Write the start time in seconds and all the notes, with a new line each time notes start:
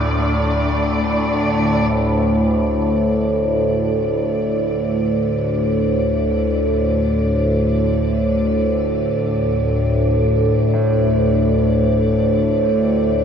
Already playing: D2 A2 D3 A3 A4 D5
1.93 D2 A2
10.74 A2